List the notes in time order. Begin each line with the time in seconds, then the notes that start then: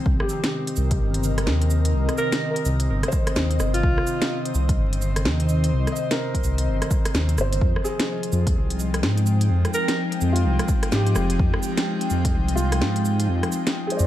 Already playing: D#3 C4 G5
0.06 C2 C3, kick
0.20 G4, cross-stick
0.26 D#5, cabasa
0.36 A#4
0.44 snare, closed hi-hat
0.67 closed hi-hat
0.76 C2, cabasa
0.91 kick, closed hi-hat
1.00 G1
1.14 closed hi-hat
1.24 cabasa
1.38 cross-stick, closed hi-hat
1.47 D#2, snare
1.62 closed hi-hat
1.71 cabasa
1.85 closed hi-hat
1.95 C2
2.09 cross-stick, closed hi-hat
2.18 A#4, cabasa
2.32 snare, closed hi-hat
2.51 A#4
2.56 closed hi-hat
2.65 C2, cabasa
2.80 closed hi-hat
2.89 G1
3.03 cross-stick, closed hi-hat
3.08 C5
3.12 kick, cabasa
3.27 cross-stick, closed hi-hat
3.36 D#2, snare, cabasa
3.51 closed hi-hat
3.59 G1 C5, cross-stick, cabasa
3.74 F4, closed hi-hat
3.83 C2, kick
3.98 cross-stick
4.07 cabasa
4.22 snare, closed hi-hat
4.45 closed hi-hat
4.55 C2, cabasa
4.69 kick, closed hi-hat
4.78 G1
4.93 closed hi-hat
5.02 cabasa
5.16 cross-stick, closed hi-hat
5.25 D#2, snare
5.40 closed hi-hat
5.49 cabasa
5.64 closed hi-hat
5.73 C2
5.87 cross-stick, closed hi-hat
5.92 D#5
5.96 cabasa
6.11 A#4, snare, closed hi-hat
6.34 kick, closed hi-hat
6.44 C2, cabasa
6.58 closed hi-hat
6.67 G1
6.82 cross-stick, closed hi-hat
6.91 kick, cabasa
7.05 cross-stick, closed hi-hat
7.14 D#2, snare, cabasa
7.29 closed hi-hat
7.38 G1 C5, cross-stick, cabasa
7.53 closed hi-hat
7.61 F2 F3, kick
7.76 cross-stick
7.84 C4 G#4, cabasa
8.00 snare, closed hi-hat
8.22 D#4, closed hi-hat
8.32 F2, cabasa
8.43 G#3, kick, closed hi-hat
8.53 C2 G5
8.70 closed hi-hat
8.80 cabasa
8.94 cross-stick, closed hi-hat
9.03 G#2, snare
9.18 closed hi-hat
9.27 cabasa
9.41 closed hi-hat
9.50 F2
9.65 cross-stick, closed hi-hat
9.74 A#4, cabasa
9.88 snare, closed hi-hat
10.12 closed hi-hat
10.21 F2, cabasa
10.32 F4, closed hi-hat
10.45 C2
10.59 cross-stick, closed hi-hat
10.69 kick, cabasa
10.83 cross-stick, closed hi-hat
10.92 G#2 G4, snare, cabasa
11.07 closed hi-hat
11.16 F1, cross-stick, cabasa
11.30 closed hi-hat
11.39 F2, kick
11.54 cross-stick
11.63 cabasa
11.77 snare, closed hi-hat
12.01 closed hi-hat
12.10 F2, cabasa
12.25 kick, closed hi-hat
12.34 C2
12.48 closed hi-hat
12.55 F4, cabasa
12.72 cross-stick, closed hi-hat
12.81 G#2, snare
12.96 closed hi-hat
13.05 cabasa
13.20 closed hi-hat
13.29 F2
13.43 cross-stick, closed hi-hat
13.52 cabasa
13.67 snare, closed hi-hat
13.87 G#4, closed hi-hat
13.92 C5
13.97 F2 D5, cabasa